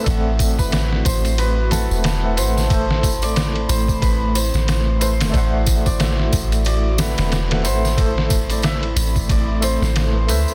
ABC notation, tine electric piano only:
X:1
M:4/4
L:1/16
Q:"Swing 16ths" 1/4=91
K:Ador
V:1 name="Tine electric piano"
[A,CAdf]8- [A,CAdf]2 [A,ABcef]3 [A,ABcef] [A,ABcef]2 | [A,Ac]8- [A,Ac]2 z4 [A,ABc]2 | [A,Acdef]8- [A,Acdef]2 [A,CABef]3 [A,ABcef] [A,ABcef]2 | [A,Ac]8- [A,Ac]2 [A,Ac]3 [A,ABc] [A,ABc]2 |]